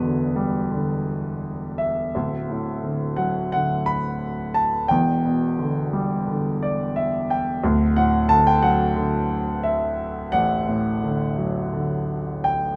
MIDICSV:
0, 0, Header, 1, 2, 480
1, 0, Start_track
1, 0, Tempo, 706714
1, 1452, Tempo, 690449
1, 1453, Time_signature, 4, 2, 24, 8
1, 3372, Tempo, 678733
1, 7212, Tempo, 708383
1, 8860, End_track
2, 0, Start_track
2, 0, Title_t, "Grand piano"
2, 0, Program_c, 0, 0
2, 0, Control_c, 0, 64, 127
2, 0, Note_on_c, 0, 28, 56
2, 0, Note_on_c, 0, 40, 57
2, 0, Note_on_c, 0, 47, 47
2, 0, Note_on_c, 0, 71, 72
2, 12, Note_on_c, 0, 50, 46
2, 244, Note_on_c, 0, 55, 53
2, 475, Note_off_c, 0, 50, 0
2, 485, Note_on_c, 0, 50, 52
2, 696, Note_off_c, 0, 47, 0
2, 1185, Note_off_c, 0, 55, 0
2, 1210, Note_on_c, 0, 76, 70
2, 1426, Note_off_c, 0, 28, 0
2, 1427, Note_off_c, 0, 40, 0
2, 1427, Note_off_c, 0, 50, 0
2, 1458, Note_on_c, 0, 26, 52
2, 1460, Note_on_c, 0, 38, 51
2, 1462, Note_off_c, 0, 71, 0
2, 1462, Control_c, 0, 64, 0
2, 1576, Control_c, 0, 64, 127
2, 1702, Note_on_c, 0, 45, 46
2, 1937, Note_on_c, 0, 50, 45
2, 2166, Note_on_c, 0, 78, 70
2, 2177, Note_on_c, 0, 54, 50
2, 2199, Note_off_c, 0, 76, 0
2, 2404, Note_off_c, 0, 78, 0
2, 2406, Note_off_c, 0, 50, 0
2, 2415, Note_on_c, 0, 78, 83
2, 2417, Note_on_c, 0, 50, 51
2, 2629, Note_off_c, 0, 45, 0
2, 2638, Note_off_c, 0, 78, 0
2, 2650, Note_on_c, 0, 83, 89
2, 3110, Note_off_c, 0, 54, 0
2, 3125, Note_on_c, 0, 81, 82
2, 3148, Note_off_c, 0, 83, 0
2, 3348, Note_off_c, 0, 50, 0
2, 3349, Note_off_c, 0, 26, 0
2, 3350, Note_off_c, 0, 38, 0
2, 3351, Note_off_c, 0, 81, 0
2, 3361, Note_on_c, 0, 79, 87
2, 3377, Note_on_c, 0, 28, 60
2, 3378, Note_on_c, 0, 40, 63
2, 3384, Control_c, 0, 64, 0
2, 3500, Control_c, 0, 64, 127
2, 3619, Note_on_c, 0, 47, 45
2, 3858, Note_on_c, 0, 50, 53
2, 4102, Note_on_c, 0, 55, 57
2, 4336, Note_off_c, 0, 50, 0
2, 4347, Note_on_c, 0, 50, 59
2, 4561, Note_off_c, 0, 47, 0
2, 4593, Note_on_c, 0, 74, 65
2, 4812, Note_off_c, 0, 74, 0
2, 4829, Note_on_c, 0, 76, 72
2, 5028, Note_off_c, 0, 79, 0
2, 5035, Note_off_c, 0, 55, 0
2, 5048, Note_off_c, 0, 76, 0
2, 5072, Note_on_c, 0, 79, 68
2, 5272, Note_off_c, 0, 50, 0
2, 5273, Note_off_c, 0, 28, 0
2, 5273, Note_off_c, 0, 40, 0
2, 5288, Note_off_c, 0, 79, 0
2, 5306, Note_on_c, 0, 38, 73
2, 5309, Control_c, 0, 64, 0
2, 5309, Note_on_c, 0, 26, 59
2, 5436, Control_c, 0, 64, 127
2, 5537, Note_on_c, 0, 45, 50
2, 5539, Note_on_c, 0, 78, 84
2, 5769, Note_on_c, 0, 81, 104
2, 5775, Note_on_c, 0, 50, 55
2, 5781, Note_off_c, 0, 78, 0
2, 5892, Note_off_c, 0, 81, 0
2, 5896, Note_on_c, 0, 79, 91
2, 6004, Note_off_c, 0, 79, 0
2, 6006, Note_on_c, 0, 78, 89
2, 6007, Note_on_c, 0, 54, 55
2, 6229, Note_off_c, 0, 50, 0
2, 6240, Note_on_c, 0, 50, 56
2, 6458, Note_off_c, 0, 45, 0
2, 6720, Note_on_c, 0, 76, 73
2, 6748, Note_off_c, 0, 78, 0
2, 6941, Note_off_c, 0, 54, 0
2, 7183, Note_off_c, 0, 50, 0
2, 7189, Note_off_c, 0, 38, 0
2, 7191, Note_off_c, 0, 26, 0
2, 7205, Note_on_c, 0, 78, 94
2, 7214, Note_on_c, 0, 33, 67
2, 7225, Note_off_c, 0, 76, 0
2, 7452, Note_on_c, 0, 45, 51
2, 7691, Note_on_c, 0, 50, 49
2, 7924, Note_on_c, 0, 54, 50
2, 8153, Note_off_c, 0, 50, 0
2, 8163, Note_on_c, 0, 50, 49
2, 8379, Note_off_c, 0, 45, 0
2, 8618, Note_off_c, 0, 78, 0
2, 8643, Note_on_c, 0, 79, 80
2, 8860, Note_off_c, 0, 33, 0
2, 8860, Note_off_c, 0, 50, 0
2, 8860, Note_off_c, 0, 54, 0
2, 8860, Note_off_c, 0, 79, 0
2, 8860, End_track
0, 0, End_of_file